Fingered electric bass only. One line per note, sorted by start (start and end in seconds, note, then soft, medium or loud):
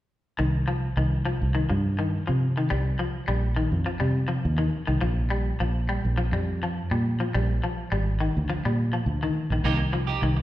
0.39 0.88 C2 medium
0.97 1.34 C2 medium
1.42 1.66 C2 medium
1.70 2.18 G2 medium
2.29 2.64 C3 medium
2.71 2.95 C2 medium
3.28 3.65 A#1 medium
3.72 3.96 F2 medium
4.01 4.37 C3 medium
4.45 4.69 D#2 medium
4.88 5.00 C2 medium
5.02 5.50 A#1 medium
5.60 5.97 A#1 medium
6.05 6.29 A#1 medium
6.32 6.81 F2 medium
6.91 7.26 A#2 medium
7.35 7.58 A#1 medium
7.92 8.29 G#1 medium
8.37 8.60 D2 medium
8.65 9.00 A#2 medium
9.06 9.31 D2 medium
9.50 9.62 A#1 medium
9.64 10.13 C2 medium
10.22 10.42 C2 medium